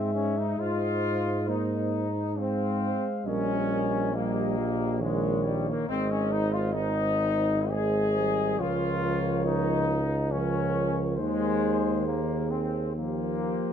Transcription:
0.00 0.54 G#2 medium
0.00 1.49 G#3 medium
0.00 0.14 C4 medium
0.00 0.54 G#4 medium
0.00 0.58 E5 medium
0.14 0.35 C#4 medium
0.37 0.59 D#4 medium
0.58 2.94 G#2 medium
0.58 1.49 F4 loud
0.58 2.23 C5 medium
0.58 1.47 D#5 medium
1.48 2.10 A#3 medium
1.48 2.37 D#4 medium
1.48 2.09 D#5 medium
2.36 3.26 G#3 medium
2.36 3.08 C4 medium
2.36 2.82 C5 medium
2.36 3.28 F5 medium
2.83 3.25 C5 medium
3.25 5.85 A#1 medium
3.25 4.13 G3 medium
3.25 4.12 C#4 medium
3.25 3.69 A#4 medium
3.25 4.11 D#5 medium
3.70 4.13 A#4 medium
4.11 4.56 G3 medium
4.11 5.01 A#3 medium
4.11 4.98 D#5 medium
4.16 5.00 G4 medium
4.58 5.02 F3 medium
4.99 5.88 D#3 medium
4.99 5.45 G#3 medium
4.99 5.89 A#4 medium
4.99 5.86 C#5 medium
5.44 5.67 G3 medium
5.69 5.90 A#3 medium
5.88 8.61 G#1 medium
5.88 6.72 G#3 medium
5.88 6.10 C4 loud
5.88 6.71 C5 medium
5.88 6.71 D#5 medium
6.11 6.32 C#4 medium
6.31 6.53 D#4 medium
6.52 6.75 F4 medium
6.73 7.69 G#3 medium
6.73 7.70 D#4 loud
6.73 7.69 C5 medium
6.73 7.70 D#5 medium
7.70 8.18 G#3 medium
7.70 8.58 G#4 medium
7.70 8.57 C5 medium
7.70 8.60 D#5 medium
8.17 8.61 G3 medium
8.59 11.20 C#2 medium
8.59 10.16 F3 medium
8.59 9.45 F4 loud
8.59 10.17 A#4 medium
8.59 10.14 C#5 medium
9.45 10.30 D#4 medium
10.31 11.21 F3 medium
10.31 11.00 C#4 medium
10.31 11.17 A#4 medium
10.31 11.17 C#5 medium
11.16 13.64 D#2 medium
11.16 12.68 D#3 medium
11.16 12.03 G#3 medium
11.16 12.67 C5 medium
11.21 12.98 G#4 medium
12.07 12.51 A#3 medium
12.50 12.96 C4 medium
12.96 13.73 F3 medium
12.96 13.73 A#3 medium
12.96 13.73 G4 medium
12.96 13.73 C5 medium

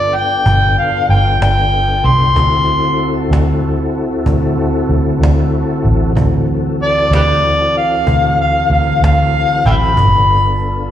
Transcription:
0.00 2.33 B3 medium
0.00 2.33 D4 medium
0.00 2.33 F4 medium
0.00 2.33 A4 medium
0.00 0.17 D5 medium
0.14 0.76 G5 medium
0.14 cajon slap soft
0.46 0.75 G1 medium
0.46 cajon bass loud
0.78 1.09 F5 medium
0.78 cajon slap soft
1.09 1.38 G1 medium
1.09 1.40 G5 medium
1.09 cajon slap soft
1.41 2.00 G1 medium
1.41 2.07 G5 medium
1.41 cajon slap loud
1.72 cajon slap soft
2.04 2.34 C2 medium
2.04 3.28 C6 loud
2.04 cajon slap soft
2.06 cajon slap soft
2.35 3.27 D2 medium
2.35 6.13 C4 medium
2.35 6.13 E4 medium
2.35 6.13 F#4 medium
2.35 6.12 A4 medium
2.35 cajon bass loud
2.68 cajon slap soft
2.99 cajon slap soft
3.31 3.60 D2 medium
3.31 cajon slap loud
3.63 cajon slap soft
3.95 cajon slap soft
4.26 4.56 D2 medium
4.26 cajon bass loud
4.26 cajon slap soft
4.58 cajon slap soft
4.89 5.19 D2 medium
4.89 cajon slap soft
5.21 5.81 D2 medium
5.21 cajon slap loud
5.53 cajon slap soft
5.85 6.14 A1 medium
5.85 cajon slap soft
6.15 7.08 D2 loud
6.15 9.93 E3 medium
6.15 9.93 C4 medium
6.15 9.93 F#4 medium
6.15 9.93 A4 medium
6.15 cajon bass loud
6.48 cajon slap soft
6.80 7.12 D5 medium
6.80 cajon slap soft
7.11 7.41 D2 medium
7.11 7.21 G4 medium
7.11 7.21 B4 medium
7.11 7.75 D5 medium
7.11 cajon slap loud
7.43 cajon slap soft
7.75 8.38 F5 medium
7.75 cajon slap soft
8.07 8.36 D2 medium
8.07 cajon bass loud
8.38 8.71 F5 medium
8.38 cajon slap soft
8.70 8.99 D2 medium
8.70 9.02 F5 medium
8.70 cajon slap soft
9.02 9.62 D2 medium
9.02 9.65 F5 medium
9.02 cajon slap loud
9.34 cajon slap soft
9.65 9.95 A1 medium
9.65 9.74 E5 medium
9.65 9.75 G5 medium
9.65 10.89 B5 loud
9.65 cajon bass medium
9.95 10.89 G1 medium
9.95 10.91 B3 medium
9.95 10.91 D4 medium
9.95 10.91 F4 medium
9.95 10.91 A4 medium
9.95 cajon bass loud
10.29 cajon slap soft
10.61 cajon slap soft

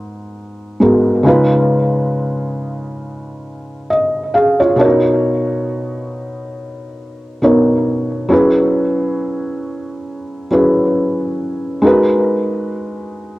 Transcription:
0.00 0.76 G#2 medium
0.00 0.77 G#3 medium
0.00 0.77 B3 medium
0.00 0.78 F#4 medium
0.00 0.81 A#4 medium
0.80 1.25 G#2 medium
0.80 1.23 G#3 soft
0.80 1.25 B3 medium
0.80 1.26 F#4 medium
0.80 1.26 A#4 medium
1.23 4.73 C#3 medium
1.23 4.74 G#3 medium
1.23 4.75 D#4 medium
1.23 3.87 F4 medium
1.28 3.88 B4 medium
3.90 4.32 D#5 medium
4.34 4.59 G#4 medium
4.34 4.58 F5 medium
4.60 5.02 F4 medium
4.60 4.79 C#5 medium
4.76 7.38 B2 medium
4.76 7.38 B3 medium
4.76 4.86 D4 medium
4.76 7.40 A#4 medium
4.81 7.42 D#4 medium
4.81 7.40 C#5 medium
7.42 8.31 B2 medium
7.42 8.31 B3 medium
7.42 8.31 D#4 soft
7.42 8.32 A#4 medium
7.42 8.32 C#5 medium
8.29 10.46 F#3 medium
8.29 10.47 C#4 medium
8.29 10.48 E4 medium
8.29 10.48 G#4 medium
8.33 10.49 B4 medium
10.51 11.84 F#3 medium
10.51 11.84 C#4 soft
10.51 11.84 E4 soft
10.51 11.85 G#4 soft
10.51 11.85 B4 medium
11.82 13.39 G#3 medium
11.82 13.39 D#4 medium
11.82 13.39 F#4 medium
11.82 13.39 A#4 medium
11.87 13.39 B4 medium

